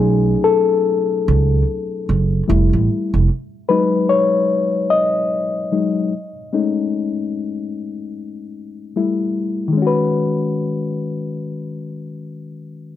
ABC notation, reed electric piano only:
X:1
M:4/4
L:1/8
Q:"Swing 16ths" 1/4=74
K:C#m
V:1 name="Reed electric piano"
G A4 z3 | z B c2 d4- | d6 z2 | [D,G,CFB]8 |]
V:2 name="Reed electric piano"
[F,A,CD]2 z4 [=G,A,E]2 | z [F,G,D] z4 [F,G,D] z | [G,A,CD] z4 z [=G,A,E]2 | z8 |]